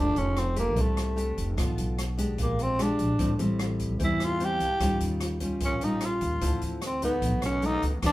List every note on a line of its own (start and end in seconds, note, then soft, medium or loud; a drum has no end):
0.00 0.15 F1 medium
0.00 0.75 F3 medium
0.00 0.36 A3 medium
0.00 0.19 D4 medium
0.00 0.36 D4 medium
0.00 0.37 G4 medium
0.16 0.76 F1 medium
0.16 0.40 C#4 medium
0.16 closed hi-hat soft
0.36 0.58 C4 medium
0.36 cross-stick medium
0.36 closed hi-hat soft
0.56 1.14 A3 medium
0.56 0.83 A#3 medium
0.56 1.14 D4 medium
0.56 1.14 G4 medium
0.56 kick soft
0.56 closed hi-hat soft
0.76 1.33 C2 medium
0.76 1.55 C3 medium
0.76 kick medium
0.76 closed hi-hat medium
0.81 1.60 A3 medium
0.97 cross-stick medium
0.97 closed hi-hat soft
1.16 1.54 A3 medium
1.16 1.54 D4 medium
1.16 1.54 G4 medium
1.16 closed hi-hat soft
1.37 1.56 F1 medium
1.37 kick soft
1.37 closed hi-hat soft
1.57 1.76 B1 medium
1.57 2.36 B2 medium
1.57 1.98 A3 medium
1.57 1.98 D4 medium
1.57 1.98 F4 medium
1.57 kick medium
1.57 cross-stick medium
1.57 closed hi-hat medium
1.77 2.38 B1 medium
1.77 closed hi-hat soft
1.98 cross-stick medium
1.98 closed hi-hat soft
2.18 2.75 G#3 medium
2.18 2.76 D4 medium
2.18 2.76 G4 medium
2.18 kick soft
2.18 closed hi-hat medium
2.38 2.95 A#1 medium
2.38 3.17 A#2 medium
2.38 kick medium
2.38 closed hi-hat medium
2.42 2.63 A#3 medium
2.59 2.83 C4 medium
2.59 closed hi-hat soft
2.79 3.16 G#3 medium
2.79 3.16 D4 medium
2.79 3.41 D4 medium
2.79 3.16 G4 medium
2.79 cross-stick medium
2.79 closed hi-hat soft
2.99 3.18 A#1 medium
2.99 kick soft
2.99 closed hi-hat soft
3.19 3.38 A1 medium
3.19 3.98 A2 medium
3.19 3.31 G3 medium
3.19 3.31 C4 medium
3.19 3.31 E4 medium
3.19 kick medium
3.19 closed hi-hat medium
3.39 4.00 A1 medium
3.39 3.96 G3 medium
3.39 3.97 C4 medium
3.39 3.97 E4 medium
3.39 closed hi-hat soft
3.59 cross-stick medium
3.59 closed hi-hat soft
3.79 kick soft
3.79 closed hi-hat soft
3.99 4.56 E2 medium
3.99 4.78 E3 medium
3.99 4.37 G3 medium
3.99 4.37 C4 medium
3.99 4.37 E4 medium
3.99 kick medium
3.99 closed hi-hat soft
4.04 4.25 E4 medium
4.20 4.46 F4 medium
4.20 cross-stick medium
4.20 closed hi-hat soft
4.39 4.66 G3 medium
4.39 4.66 C4 medium
4.39 4.66 E4 medium
4.39 closed hi-hat soft
4.45 5.03 G4 medium
4.60 4.79 C2 medium
4.60 kick soft
4.60 closed hi-hat soft
4.80 4.99 D#2 medium
4.80 5.59 D#3 medium
4.80 5.37 G3 medium
4.80 5.38 C#4 soft
4.80 5.38 F4 medium
4.80 kick medium
4.80 cross-stick medium
4.80 closed hi-hat medium
5.00 5.61 D#2 medium
5.00 closed hi-hat soft
5.20 cross-stick medium
5.20 closed hi-hat soft
5.40 5.78 G3 medium
5.40 5.78 C#4 medium
5.40 5.78 F4 medium
5.40 kick soft
5.40 closed hi-hat soft
5.60 6.17 A#1 loud
5.60 6.40 A#2 medium
5.60 kick medium
5.60 closed hi-hat medium
5.65 5.86 C#4 medium
5.81 6.40 G3 medium
5.81 6.41 C#4 soft
5.81 6.07 D#4 medium
5.81 6.41 F4 medium
5.81 closed hi-hat soft
6.00 cross-stick medium
6.00 closed hi-hat soft
6.05 6.64 F4 medium
6.21 6.40 D#2 loud
6.21 kick soft
6.21 closed hi-hat soft
6.41 6.60 D2 loud
6.41 7.20 D3 medium
6.41 6.81 F3 medium
6.41 6.82 C4 medium
6.41 6.82 E4 medium
6.41 kick medium
6.41 closed hi-hat medium
6.61 7.24 D2 medium
6.61 closed hi-hat soft
6.81 cross-stick medium
6.81 closed hi-hat soft
6.86 7.03 C4 medium
7.02 7.59 F#3 medium
7.02 7.60 A3 medium
7.02 7.41 B3 medium
7.02 7.60 D#4 medium
7.02 kick soft
7.02 closed hi-hat soft
7.22 7.79 B1 medium
7.22 8.01 B2 medium
7.22 kick medium
7.22 closed hi-hat soft
7.42 7.67 C#4 medium
7.42 cross-stick medium
7.42 closed hi-hat soft
7.62 7.89 F#3 medium
7.62 7.89 A3 medium
7.62 7.89 D#4 medium
7.62 7.84 D#4 loud
7.62 closed hi-hat soft
7.82 8.01 C#2 loud
7.82 kick soft
7.82 closed hi-hat soft
8.02 8.12 E2 medium
8.02 8.12 E3 medium
8.02 8.12 A#3 medium
8.02 8.12 D4 medium
8.02 8.12 G4 medium
8.02 kick medium
8.02 cross-stick medium
8.02 closed hi-hat medium